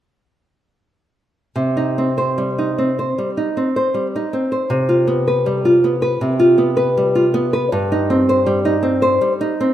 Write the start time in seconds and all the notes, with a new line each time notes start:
1.56 C3
1.77 D#4
1.98 C4
2.18 C5
2.38 G3
2.58 D#4
2.78 C4
2.99 C5
3.18 G3
3.37 D#4
3.57 C4
3.76 C5
3.94 G3
4.16 D#4
4.33 C4
4.52 C5
4.70 C3
4.89 F4
5.07 B3
5.28 B4
5.46 G3
5.65 F4
5.84 B3
6.02 B4
6.21 C3
6.39 F4
6.58 B3
6.77 B4
6.97 G3
7.15 F4
7.34 B3
7.53 B4
7.72 G2
7.92 D#4
8.10 C4
8.29 C5
8.46 G3
8.65 D#4
8.83 C4
9.02 C5
9.21 G3
9.41 D#4
9.60 C4